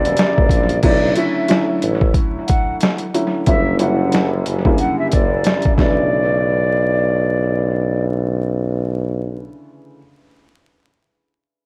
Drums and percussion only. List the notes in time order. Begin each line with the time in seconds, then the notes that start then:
0.05 closed hi-hat
0.17 snare, closed hi-hat
0.38 kick
0.49 kick, closed hi-hat
0.69 closed hi-hat
0.83 kick, closed hi-hat, crash
1.15 closed hi-hat
1.48 snare, closed hi-hat
1.82 closed hi-hat
2.01 kick
2.14 kick, closed hi-hat
2.48 kick, closed hi-hat
2.81 snare, closed hi-hat
2.98 closed hi-hat
3.14 closed hi-hat
3.46 kick, closed hi-hat
3.79 closed hi-hat
4.12 snare, closed hi-hat
4.46 closed hi-hat
4.65 kick
4.78 closed hi-hat
5.12 kick, closed hi-hat
5.44 snare, closed hi-hat
5.62 kick, closed hi-hat
5.78 kick, snare